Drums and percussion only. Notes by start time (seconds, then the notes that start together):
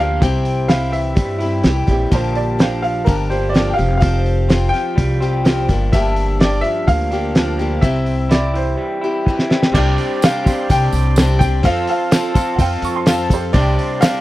0.22 kick, open hi-hat
0.45 open hi-hat
0.69 snare, open hi-hat
0.93 open hi-hat
1.16 kick, open hi-hat
1.40 open hi-hat
1.64 snare, open hi-hat
1.87 kick, open hi-hat
2.12 kick, open hi-hat
2.36 open hi-hat
2.60 snare, open hi-hat
2.84 open hi-hat
3.07 kick, open hi-hat
3.31 open hi-hat
3.55 snare, open hi-hat
3.79 open hi-hat
4.02 kick, open hi-hat
4.26 open hi-hat
4.50 snare, open hi-hat
4.74 snare, open hi-hat
4.98 kick, open hi-hat
5.22 open hi-hat
5.45 snare, open hi-hat
5.69 kick, open hi-hat
5.93 kick, open hi-hat
6.16 open hi-hat
6.40 snare, open hi-hat
6.64 open hi-hat
6.88 kick, open hi-hat
7.12 open hi-hat
7.35 snare, open hi-hat
7.59 open hi-hat
7.82 kick, open hi-hat
8.06 open hi-hat
8.31 snare, open hi-hat
8.55 open hi-hat
9.27 kick
9.39 snare
9.51 snare
9.63 snare
9.75 kick, crash
9.98 open hi-hat
10.22 snare, open hi-hat, tambourine
10.46 kick, open hi-hat, tambourine
10.70 kick, open hi-hat, tambourine
10.93 open hi-hat, tambourine
11.16 snare, open hi-hat, tambourine
11.41 kick, open hi-hat, tambourine
11.63 kick, open hi-hat
11.87 open hi-hat
12.11 snare, open hi-hat, tambourine
12.35 kick, open hi-hat, tambourine
12.59 kick, open hi-hat, tambourine
12.82 open hi-hat, tambourine
13.06 snare, open hi-hat, tambourine
13.30 kick, open hi-hat, tambourine
13.54 kick, open hi-hat
13.79 open hi-hat
14.02 snare, open hi-hat, tambourine